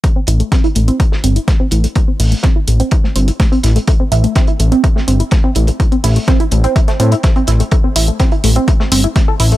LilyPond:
<<
  \new Staff \with { instrumentName = "Synth arpeggio sound" } { \time 4/4 \key a \minor \tempo 4 = 125 a16 c'16 e'16 a16 c'16 e'16 a16 c'16 e'16 a16 c'16 e'16 a16 c'16 e'16 a16 | a16 c'16 e'16 a16 c'16 e'16 a16 c'16 e'16 a16 c'16 e'16 a16 c'16 e'16 a16 | a16 c'16 e'16 a16 c'16 e'16 a16 c'16 e'16 a16 c'16 e'16 a16 c'16 e'16 a16 | a16 c'16 e'16 a16 c'16 e'16 a16 c'16 e'16 a16 c'16 e'16 a16 c'16 e'16 a16 |
a16 c'16 e'16 a16 c'16 e'16 a16 c'16 e'16 a16 c'16 e'16 a16 a'16 e'16 a16 | }
  \new Staff \with { instrumentName = "Analog synth bass" } { \clef bass \time 4/4 \key a \minor r8 a,,8 r8 a,,8 r8 g,,8 r8 a,,8 | r8 a,,8 r8 a,,8 r8 g,,8 r8 a,,8 | r8 a,,8 r8 a,,8 r8 g,,8 r8 a,,8 | r8 a,,8 r8 a,,8 r8 a,8 r8 a,,8 |
r8 a,,8 r8 a,,8 r8 g,,8 r8 a,,8 | }
  \new DrumStaff \with { instrumentName = "Drums" } \drummode { \time 4/4 <hh bd>8 hh16 hh16 <hh bd sn>16 hh16 hh16 hh16 <hh bd>16 sn16 hh16 hh16 <hh bd sn>8 hh16 hh16 | <hh bd>8 <hh hho>16 hh16 <hh bd sn>8 hh16 hh16 <hh bd>16 sn16 hh16 hh16 <hh bd sn>16 hh16 <hh sn>16 hh16 | <hh bd>8 hh16 hh16 <hh bd sn>16 hh16 hh16 hh16 <hh bd>16 sn16 hh16 hh16 <hh bd sn>8 hh16 hh16 | <hh bd>16 hh16 <hh hho>16 hh16 <hh bd sn>16 hh16 hh16 hh16 <hh bd>16 <hh sn>16 hh16 hh16 <hh bd sn>16 hh16 <hh sn>16 hh16 |
<hh bd>8 <hh hho>16 hh16 <hh bd sn>16 hh16 <hh hho>16 hh16 <hh bd>16 sn16 <hh hho>8 <hh bd sn>8 <hh hho>16 hh16 | }
>>